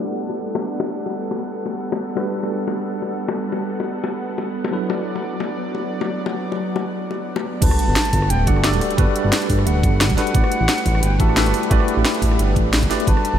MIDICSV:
0, 0, Header, 1, 7, 480
1, 0, Start_track
1, 0, Key_signature, 1, "major"
1, 0, Tempo, 340909
1, 1128, Time_signature, 4, 2, 24, 8
1, 18850, End_track
2, 0, Start_track
2, 0, Title_t, "Flute"
2, 0, Program_c, 0, 73
2, 10729, Note_on_c, 0, 81, 121
2, 11691, Note_on_c, 0, 79, 114
2, 11713, Note_off_c, 0, 81, 0
2, 11933, Note_on_c, 0, 78, 101
2, 11954, Note_off_c, 0, 79, 0
2, 12164, Note_off_c, 0, 78, 0
2, 12172, Note_on_c, 0, 76, 97
2, 12257, Note_off_c, 0, 76, 0
2, 12410, Note_on_c, 0, 74, 94
2, 12632, Note_off_c, 0, 74, 0
2, 12649, Note_on_c, 0, 74, 98
2, 13611, Note_on_c, 0, 78, 104
2, 13632, Note_off_c, 0, 74, 0
2, 14323, Note_off_c, 0, 78, 0
2, 14331, Note_on_c, 0, 78, 116
2, 15527, Note_on_c, 0, 79, 109
2, 15548, Note_off_c, 0, 78, 0
2, 15767, Note_on_c, 0, 81, 100
2, 15788, Note_off_c, 0, 79, 0
2, 16727, Note_off_c, 0, 81, 0
2, 18407, Note_on_c, 0, 81, 121
2, 18850, Note_off_c, 0, 81, 0
2, 18850, End_track
3, 0, Start_track
3, 0, Title_t, "Tine electric piano"
3, 0, Program_c, 1, 4
3, 0, Control_c, 1, 64, 127
3, 0, Note_on_c, 1, 57, 75
3, 0, Note_on_c, 1, 64, 72
3, 0, Note_on_c, 1, 66, 68
3, 0, Note_on_c, 1, 67, 65
3, 0, Note_on_c, 1, 71, 65
3, 0, Note_on_c, 1, 74, 83
3, 3013, Note_off_c, 1, 57, 0
3, 3016, Note_off_c, 1, 64, 0
3, 3020, Note_off_c, 1, 66, 0
3, 3022, Note_off_c, 1, 67, 0
3, 3026, Note_off_c, 1, 71, 0
3, 3028, Note_off_c, 1, 74, 0
3, 3034, Note_on_c, 1, 55, 75
3, 3042, Note_on_c, 1, 62, 70
3, 3050, Note_on_c, 1, 66, 67
3, 3057, Note_on_c, 1, 69, 64
3, 3064, Note_on_c, 1, 71, 83
3, 3066, Control_c, 1, 64, 0
3, 3317, Control_c, 1, 64, 127
3, 6614, Note_off_c, 1, 55, 0
3, 6618, Note_off_c, 1, 62, 0
3, 6622, Note_off_c, 1, 66, 0
3, 6626, Note_off_c, 1, 69, 0
3, 6629, Note_off_c, 1, 71, 0
3, 6633, Note_on_c, 1, 54, 74
3, 6641, Note_on_c, 1, 62, 70
3, 6647, Note_on_c, 1, 64, 68
3, 6656, Note_on_c, 1, 69, 69
3, 6664, Note_on_c, 1, 71, 85
3, 6668, Control_c, 1, 64, 0
3, 6873, Control_c, 1, 64, 127
3, 10454, Note_off_c, 1, 54, 0
3, 10458, Note_off_c, 1, 62, 0
3, 10461, Note_off_c, 1, 64, 0
3, 10465, Note_off_c, 1, 69, 0
3, 10469, Note_off_c, 1, 71, 0
3, 10712, Note_on_c, 1, 55, 70
3, 10720, Note_on_c, 1, 62, 68
3, 10728, Note_on_c, 1, 66, 70
3, 10736, Note_on_c, 1, 69, 67
3, 10742, Note_on_c, 1, 71, 82
3, 10748, Control_c, 1, 64, 0
3, 11024, Control_c, 1, 64, 127
3, 11893, Note_off_c, 1, 55, 0
3, 11897, Note_off_c, 1, 62, 0
3, 11901, Note_off_c, 1, 66, 0
3, 11905, Note_off_c, 1, 69, 0
3, 11908, Note_off_c, 1, 71, 0
3, 11923, Note_on_c, 1, 55, 87
3, 11926, Note_on_c, 1, 62, 81
3, 11929, Note_on_c, 1, 66, 78
3, 11934, Note_on_c, 1, 69, 79
3, 11937, Note_on_c, 1, 74, 90
3, 12139, Note_off_c, 1, 55, 0
3, 12140, Note_off_c, 1, 62, 0
3, 12142, Note_off_c, 1, 66, 0
3, 12144, Note_off_c, 1, 69, 0
3, 12146, Note_off_c, 1, 74, 0
3, 12162, Note_on_c, 1, 55, 100
3, 12166, Note_on_c, 1, 62, 90
3, 12170, Note_on_c, 1, 66, 95
3, 12174, Note_on_c, 1, 69, 90
3, 12177, Note_on_c, 1, 74, 109
3, 12615, Note_off_c, 1, 55, 0
3, 12620, Note_off_c, 1, 62, 0
3, 12622, Note_off_c, 1, 66, 0
3, 12624, Note_off_c, 1, 69, 0
3, 12626, Note_off_c, 1, 74, 0
3, 12631, Note_on_c, 1, 55, 96
3, 12640, Note_on_c, 1, 62, 94
3, 12648, Note_on_c, 1, 66, 94
3, 12654, Note_on_c, 1, 69, 87
3, 12661, Note_on_c, 1, 71, 109
3, 13813, Note_off_c, 1, 55, 0
3, 13817, Note_off_c, 1, 62, 0
3, 13822, Note_off_c, 1, 66, 0
3, 13824, Note_off_c, 1, 69, 0
3, 13828, Note_off_c, 1, 71, 0
3, 14319, Note_on_c, 1, 55, 94
3, 14323, Note_on_c, 1, 62, 86
3, 14328, Note_on_c, 1, 66, 85
3, 14331, Note_on_c, 1, 69, 86
3, 14335, Note_on_c, 1, 71, 104
3, 14461, Note_off_c, 1, 55, 0
3, 14463, Note_off_c, 1, 62, 0
3, 14465, Note_off_c, 1, 66, 0
3, 14467, Note_off_c, 1, 69, 0
3, 14468, Note_off_c, 1, 71, 0
3, 14551, Note_on_c, 1, 57, 78
3, 14559, Note_on_c, 1, 64, 69
3, 14564, Note_on_c, 1, 66, 66
3, 14570, Note_on_c, 1, 67, 70
3, 14577, Note_on_c, 1, 71, 69
3, 14583, Control_c, 1, 64, 0
3, 14583, Note_on_c, 1, 74, 83
3, 14876, Control_c, 1, 64, 127
3, 15733, Note_off_c, 1, 57, 0
3, 15737, Note_off_c, 1, 64, 0
3, 15739, Note_off_c, 1, 66, 0
3, 15742, Note_off_c, 1, 67, 0
3, 15746, Note_off_c, 1, 71, 0
3, 15749, Note_off_c, 1, 74, 0
3, 15761, Note_on_c, 1, 57, 83
3, 15764, Note_on_c, 1, 64, 80
3, 15768, Note_on_c, 1, 66, 78
3, 15770, Note_on_c, 1, 67, 78
3, 15773, Note_on_c, 1, 71, 79
3, 15776, Note_on_c, 1, 76, 97
3, 15978, Note_off_c, 1, 57, 0
3, 15979, Note_off_c, 1, 64, 0
3, 15981, Note_off_c, 1, 66, 0
3, 15982, Note_off_c, 1, 67, 0
3, 15984, Note_off_c, 1, 71, 0
3, 15985, Note_off_c, 1, 76, 0
3, 15997, Note_on_c, 1, 57, 97
3, 16000, Note_on_c, 1, 64, 89
3, 16002, Note_on_c, 1, 66, 95
3, 16007, Note_on_c, 1, 67, 93
3, 16009, Note_on_c, 1, 71, 92
3, 16012, Note_on_c, 1, 76, 109
3, 16456, Note_off_c, 1, 57, 0
3, 16457, Note_off_c, 1, 64, 0
3, 16459, Note_off_c, 1, 66, 0
3, 16461, Note_off_c, 1, 67, 0
3, 16462, Note_off_c, 1, 71, 0
3, 16463, Note_off_c, 1, 76, 0
3, 16472, Note_on_c, 1, 57, 100
3, 16477, Note_on_c, 1, 64, 91
3, 16484, Note_on_c, 1, 66, 88
3, 16488, Note_on_c, 1, 67, 92
3, 16496, Note_on_c, 1, 71, 93
3, 16502, Note_on_c, 1, 74, 111
3, 17653, Note_off_c, 1, 57, 0
3, 17656, Note_off_c, 1, 64, 0
3, 17659, Note_off_c, 1, 66, 0
3, 17661, Note_off_c, 1, 67, 0
3, 17665, Note_off_c, 1, 71, 0
3, 17669, Note_off_c, 1, 74, 0
3, 18160, Note_on_c, 1, 57, 95
3, 18163, Note_on_c, 1, 64, 87
3, 18166, Note_on_c, 1, 66, 84
3, 18168, Note_on_c, 1, 67, 86
3, 18172, Note_on_c, 1, 71, 85
3, 18176, Note_on_c, 1, 74, 108
3, 18301, Note_off_c, 1, 57, 0
3, 18303, Note_off_c, 1, 64, 0
3, 18304, Note_off_c, 1, 66, 0
3, 18305, Note_off_c, 1, 67, 0
3, 18307, Note_off_c, 1, 71, 0
3, 18309, Note_off_c, 1, 74, 0
3, 18393, Note_on_c, 1, 55, 73
3, 18400, Note_on_c, 1, 62, 72
3, 18407, Note_on_c, 1, 66, 72
3, 18415, Note_on_c, 1, 69, 66
3, 18422, Note_on_c, 1, 71, 82
3, 18425, Control_c, 1, 64, 0
3, 18635, Control_c, 1, 64, 127
3, 18850, Note_off_c, 1, 55, 0
3, 18850, Note_off_c, 1, 62, 0
3, 18850, Note_off_c, 1, 66, 0
3, 18850, Note_off_c, 1, 69, 0
3, 18850, Note_off_c, 1, 71, 0
3, 18850, End_track
4, 0, Start_track
4, 0, Title_t, "Analog synth pad"
4, 0, Program_c, 2, 89
4, 0, Note_on_c, 2, 55, 82
4, 0, Note_on_c, 2, 59, 74
4, 0, Note_on_c, 2, 62, 75
4, 0, Note_on_c, 2, 69, 90
4, 0, Note_on_c, 2, 78, 75
4, 3007, Note_off_c, 2, 62, 0
4, 6589, Note_off_c, 2, 55, 0
4, 6589, Note_off_c, 2, 69, 0
4, 6647, Note_on_c, 2, 54, 81
4, 6647, Note_on_c, 2, 74, 88
4, 10670, Note_off_c, 2, 59, 0
4, 10671, Note_off_c, 2, 78, 0
4, 10686, Note_off_c, 2, 54, 0
4, 10686, Note_off_c, 2, 74, 0
4, 10730, Note_on_c, 2, 71, 89
4, 10731, Note_on_c, 2, 57, 89
4, 10732, Note_on_c, 2, 78, 74
4, 14531, Note_off_c, 2, 57, 0
4, 14566, Note_on_c, 2, 62, 80
4, 14568, Note_on_c, 2, 55, 85
4, 18353, Note_off_c, 2, 71, 0
4, 18369, Note_off_c, 2, 55, 0
4, 18369, Note_off_c, 2, 62, 0
4, 18404, Note_on_c, 2, 57, 88
4, 18404, Note_on_c, 2, 71, 93
4, 18850, Note_off_c, 2, 57, 0
4, 18850, Note_off_c, 2, 71, 0
4, 18850, Note_off_c, 2, 78, 0
4, 18850, End_track
5, 0, Start_track
5, 0, Title_t, "Analog synth bass"
5, 0, Program_c, 3, 38
5, 10727, Note_on_c, 3, 31, 101
5, 10844, Note_off_c, 3, 31, 0
5, 11095, Note_on_c, 3, 31, 95
5, 11196, Note_off_c, 3, 31, 0
5, 11445, Note_on_c, 3, 31, 101
5, 11664, Note_off_c, 3, 31, 0
5, 11687, Note_on_c, 3, 26, 93
5, 11926, Note_on_c, 3, 31, 91
5, 11947, Note_off_c, 3, 26, 0
5, 12297, Note_on_c, 3, 26, 97
5, 12318, Note_off_c, 3, 31, 0
5, 12396, Note_off_c, 3, 26, 0
5, 12648, Note_on_c, 3, 31, 100
5, 12764, Note_off_c, 3, 31, 0
5, 13015, Note_on_c, 3, 31, 98
5, 13116, Note_off_c, 3, 31, 0
5, 13367, Note_on_c, 3, 31, 105
5, 13585, Note_off_c, 3, 31, 0
5, 13604, Note_on_c, 3, 26, 88
5, 13848, Note_on_c, 3, 31, 86
5, 13869, Note_off_c, 3, 26, 0
5, 14215, Note_on_c, 3, 26, 95
5, 14236, Note_off_c, 3, 31, 0
5, 14316, Note_off_c, 3, 26, 0
5, 14566, Note_on_c, 3, 33, 97
5, 14683, Note_off_c, 3, 33, 0
5, 14936, Note_on_c, 3, 33, 99
5, 15036, Note_off_c, 3, 33, 0
5, 15286, Note_on_c, 3, 33, 104
5, 15505, Note_off_c, 3, 33, 0
5, 15529, Note_on_c, 3, 31, 93
5, 15765, Note_on_c, 3, 33, 89
5, 15787, Note_off_c, 3, 31, 0
5, 16138, Note_on_c, 3, 31, 92
5, 16159, Note_off_c, 3, 33, 0
5, 16237, Note_off_c, 3, 31, 0
5, 16486, Note_on_c, 3, 33, 96
5, 16603, Note_off_c, 3, 33, 0
5, 16856, Note_on_c, 3, 33, 94
5, 16956, Note_off_c, 3, 33, 0
5, 17205, Note_on_c, 3, 33, 98
5, 17424, Note_off_c, 3, 33, 0
5, 17448, Note_on_c, 3, 31, 89
5, 17686, Note_on_c, 3, 33, 89
5, 17707, Note_off_c, 3, 31, 0
5, 18056, Note_on_c, 3, 31, 93
5, 18077, Note_off_c, 3, 33, 0
5, 18156, Note_off_c, 3, 31, 0
5, 18407, Note_on_c, 3, 31, 100
5, 18524, Note_off_c, 3, 31, 0
5, 18777, Note_on_c, 3, 31, 97
5, 18850, Note_off_c, 3, 31, 0
5, 18850, End_track
6, 0, Start_track
6, 0, Title_t, "Sub drop"
6, 0, Program_c, 4, 103
6, 10727, Note_on_c, 4, 60, 76
6, 12648, Note_off_c, 4, 60, 0
6, 18850, End_track
7, 0, Start_track
7, 0, Title_t, "Drums"
7, 415, Note_on_c, 9, 60, 57
7, 556, Note_off_c, 9, 60, 0
7, 775, Note_on_c, 9, 60, 101
7, 915, Note_off_c, 9, 60, 0
7, 1124, Note_on_c, 9, 60, 100
7, 1265, Note_off_c, 9, 60, 0
7, 1493, Note_on_c, 9, 60, 66
7, 1634, Note_off_c, 9, 60, 0
7, 1845, Note_on_c, 9, 60, 79
7, 1986, Note_off_c, 9, 60, 0
7, 2332, Note_on_c, 9, 60, 66
7, 2473, Note_off_c, 9, 60, 0
7, 2706, Note_on_c, 9, 60, 93
7, 2847, Note_off_c, 9, 60, 0
7, 3050, Note_on_c, 9, 60, 90
7, 3190, Note_off_c, 9, 60, 0
7, 3423, Note_on_c, 9, 60, 61
7, 3564, Note_off_c, 9, 60, 0
7, 3767, Note_on_c, 9, 60, 82
7, 3907, Note_off_c, 9, 60, 0
7, 4253, Note_on_c, 9, 60, 57
7, 4394, Note_off_c, 9, 60, 0
7, 4624, Note_on_c, 9, 60, 98
7, 4765, Note_off_c, 9, 60, 0
7, 4961, Note_on_c, 9, 60, 77
7, 5102, Note_off_c, 9, 60, 0
7, 5350, Note_on_c, 9, 60, 63
7, 5490, Note_off_c, 9, 60, 0
7, 5683, Note_on_c, 9, 60, 84
7, 5824, Note_off_c, 9, 60, 0
7, 6167, Note_on_c, 9, 60, 63
7, 6308, Note_off_c, 9, 60, 0
7, 6539, Note_on_c, 9, 60, 83
7, 6680, Note_off_c, 9, 60, 0
7, 6896, Note_on_c, 9, 60, 85
7, 7036, Note_off_c, 9, 60, 0
7, 7258, Note_on_c, 9, 60, 64
7, 7399, Note_off_c, 9, 60, 0
7, 7607, Note_on_c, 9, 60, 83
7, 7748, Note_off_c, 9, 60, 0
7, 8091, Note_on_c, 9, 60, 58
7, 8232, Note_off_c, 9, 60, 0
7, 8464, Note_on_c, 9, 60, 87
7, 8605, Note_off_c, 9, 60, 0
7, 8815, Note_on_c, 9, 60, 91
7, 8955, Note_off_c, 9, 60, 0
7, 9178, Note_on_c, 9, 60, 64
7, 9319, Note_off_c, 9, 60, 0
7, 9514, Note_on_c, 9, 60, 86
7, 9655, Note_off_c, 9, 60, 0
7, 10006, Note_on_c, 9, 60, 63
7, 10147, Note_off_c, 9, 60, 0
7, 10362, Note_on_c, 9, 60, 93
7, 10503, Note_off_c, 9, 60, 0
7, 10725, Note_on_c, 9, 36, 120
7, 10729, Note_on_c, 9, 42, 99
7, 10729, Note_on_c, 9, 49, 102
7, 10859, Note_on_c, 9, 37, 62
7, 10866, Note_off_c, 9, 36, 0
7, 10870, Note_off_c, 9, 42, 0
7, 10870, Note_off_c, 9, 49, 0
7, 10968, Note_on_c, 9, 42, 68
7, 11000, Note_off_c, 9, 37, 0
7, 11109, Note_off_c, 9, 42, 0
7, 11208, Note_on_c, 9, 38, 125
7, 11208, Note_on_c, 9, 42, 97
7, 11337, Note_off_c, 9, 42, 0
7, 11337, Note_on_c, 9, 42, 38
7, 11349, Note_off_c, 9, 38, 0
7, 11446, Note_on_c, 9, 36, 60
7, 11447, Note_on_c, 9, 46, 72
7, 11477, Note_off_c, 9, 42, 0
7, 11577, Note_on_c, 9, 37, 54
7, 11586, Note_off_c, 9, 36, 0
7, 11588, Note_off_c, 9, 46, 0
7, 11688, Note_on_c, 9, 42, 97
7, 11718, Note_off_c, 9, 37, 0
7, 11829, Note_off_c, 9, 42, 0
7, 11926, Note_on_c, 9, 36, 109
7, 11929, Note_on_c, 9, 42, 72
7, 12059, Note_on_c, 9, 37, 36
7, 12067, Note_off_c, 9, 36, 0
7, 12069, Note_off_c, 9, 42, 0
7, 12168, Note_on_c, 9, 38, 119
7, 12168, Note_on_c, 9, 42, 95
7, 12200, Note_off_c, 9, 37, 0
7, 12298, Note_off_c, 9, 42, 0
7, 12298, Note_on_c, 9, 42, 40
7, 12309, Note_off_c, 9, 38, 0
7, 12410, Note_on_c, 9, 37, 48
7, 12410, Note_on_c, 9, 46, 73
7, 12439, Note_off_c, 9, 42, 0
7, 12539, Note_on_c, 9, 42, 40
7, 12551, Note_off_c, 9, 37, 0
7, 12551, Note_off_c, 9, 46, 0
7, 12647, Note_on_c, 9, 36, 127
7, 12648, Note_off_c, 9, 42, 0
7, 12648, Note_on_c, 9, 42, 96
7, 12788, Note_off_c, 9, 36, 0
7, 12789, Note_off_c, 9, 42, 0
7, 12892, Note_on_c, 9, 42, 68
7, 13033, Note_off_c, 9, 42, 0
7, 13130, Note_on_c, 9, 38, 127
7, 13130, Note_on_c, 9, 42, 94
7, 13261, Note_off_c, 9, 42, 0
7, 13261, Note_on_c, 9, 42, 36
7, 13271, Note_off_c, 9, 38, 0
7, 13367, Note_on_c, 9, 36, 65
7, 13371, Note_on_c, 9, 46, 74
7, 13402, Note_off_c, 9, 42, 0
7, 13499, Note_on_c, 9, 37, 51
7, 13508, Note_off_c, 9, 36, 0
7, 13512, Note_off_c, 9, 46, 0
7, 13611, Note_on_c, 9, 42, 98
7, 13640, Note_off_c, 9, 37, 0
7, 13752, Note_off_c, 9, 42, 0
7, 13847, Note_on_c, 9, 36, 112
7, 13851, Note_on_c, 9, 42, 68
7, 13988, Note_off_c, 9, 36, 0
7, 13992, Note_off_c, 9, 42, 0
7, 14091, Note_on_c, 9, 38, 124
7, 14091, Note_on_c, 9, 42, 90
7, 14216, Note_on_c, 9, 36, 62
7, 14219, Note_off_c, 9, 42, 0
7, 14219, Note_on_c, 9, 42, 37
7, 14232, Note_off_c, 9, 38, 0
7, 14330, Note_on_c, 9, 38, 38
7, 14330, Note_on_c, 9, 46, 72
7, 14357, Note_off_c, 9, 36, 0
7, 14360, Note_off_c, 9, 42, 0
7, 14459, Note_on_c, 9, 42, 38
7, 14471, Note_off_c, 9, 38, 0
7, 14471, Note_off_c, 9, 46, 0
7, 14567, Note_on_c, 9, 36, 127
7, 14569, Note_off_c, 9, 42, 0
7, 14569, Note_on_c, 9, 42, 93
7, 14697, Note_on_c, 9, 37, 60
7, 14707, Note_off_c, 9, 36, 0
7, 14710, Note_off_c, 9, 42, 0
7, 14806, Note_on_c, 9, 42, 65
7, 14838, Note_off_c, 9, 37, 0
7, 14947, Note_off_c, 9, 42, 0
7, 15047, Note_on_c, 9, 38, 127
7, 15047, Note_on_c, 9, 42, 91
7, 15177, Note_off_c, 9, 42, 0
7, 15177, Note_on_c, 9, 42, 36
7, 15188, Note_off_c, 9, 38, 0
7, 15286, Note_on_c, 9, 36, 63
7, 15287, Note_on_c, 9, 46, 75
7, 15317, Note_off_c, 9, 42, 0
7, 15416, Note_on_c, 9, 37, 49
7, 15427, Note_off_c, 9, 36, 0
7, 15428, Note_off_c, 9, 46, 0
7, 15527, Note_on_c, 9, 42, 89
7, 15557, Note_off_c, 9, 37, 0
7, 15668, Note_off_c, 9, 42, 0
7, 15765, Note_on_c, 9, 36, 113
7, 15769, Note_on_c, 9, 42, 66
7, 15899, Note_on_c, 9, 37, 37
7, 15906, Note_off_c, 9, 36, 0
7, 15910, Note_off_c, 9, 42, 0
7, 16006, Note_on_c, 9, 38, 127
7, 16006, Note_on_c, 9, 42, 87
7, 16040, Note_off_c, 9, 37, 0
7, 16139, Note_off_c, 9, 42, 0
7, 16139, Note_on_c, 9, 42, 36
7, 16147, Note_off_c, 9, 38, 0
7, 16248, Note_on_c, 9, 37, 49
7, 16248, Note_on_c, 9, 46, 75
7, 16279, Note_off_c, 9, 42, 0
7, 16378, Note_on_c, 9, 42, 37
7, 16388, Note_off_c, 9, 37, 0
7, 16388, Note_off_c, 9, 46, 0
7, 16486, Note_on_c, 9, 36, 126
7, 16487, Note_off_c, 9, 42, 0
7, 16487, Note_on_c, 9, 42, 91
7, 16617, Note_on_c, 9, 37, 58
7, 16626, Note_off_c, 9, 36, 0
7, 16628, Note_off_c, 9, 42, 0
7, 16729, Note_on_c, 9, 42, 62
7, 16758, Note_off_c, 9, 37, 0
7, 16869, Note_off_c, 9, 42, 0
7, 16969, Note_on_c, 9, 38, 122
7, 16969, Note_on_c, 9, 42, 89
7, 17099, Note_off_c, 9, 42, 0
7, 17099, Note_on_c, 9, 42, 37
7, 17110, Note_off_c, 9, 38, 0
7, 17206, Note_on_c, 9, 36, 59
7, 17210, Note_on_c, 9, 46, 79
7, 17240, Note_off_c, 9, 42, 0
7, 17339, Note_on_c, 9, 37, 49
7, 17347, Note_off_c, 9, 36, 0
7, 17351, Note_off_c, 9, 46, 0
7, 17449, Note_on_c, 9, 42, 92
7, 17480, Note_off_c, 9, 37, 0
7, 17590, Note_off_c, 9, 42, 0
7, 17686, Note_on_c, 9, 36, 106
7, 17691, Note_on_c, 9, 42, 64
7, 17827, Note_off_c, 9, 36, 0
7, 17832, Note_off_c, 9, 42, 0
7, 17930, Note_on_c, 9, 38, 127
7, 17930, Note_on_c, 9, 42, 89
7, 18056, Note_on_c, 9, 36, 68
7, 18062, Note_off_c, 9, 42, 0
7, 18062, Note_on_c, 9, 42, 35
7, 18070, Note_off_c, 9, 38, 0
7, 18172, Note_on_c, 9, 38, 39
7, 18172, Note_on_c, 9, 46, 82
7, 18196, Note_off_c, 9, 36, 0
7, 18202, Note_off_c, 9, 42, 0
7, 18303, Note_on_c, 9, 42, 37
7, 18312, Note_off_c, 9, 38, 0
7, 18312, Note_off_c, 9, 46, 0
7, 18406, Note_on_c, 9, 36, 124
7, 18413, Note_off_c, 9, 42, 0
7, 18413, Note_on_c, 9, 42, 90
7, 18543, Note_on_c, 9, 37, 54
7, 18547, Note_off_c, 9, 36, 0
7, 18554, Note_off_c, 9, 42, 0
7, 18653, Note_on_c, 9, 42, 62
7, 18684, Note_off_c, 9, 37, 0
7, 18794, Note_off_c, 9, 42, 0
7, 18850, End_track
0, 0, End_of_file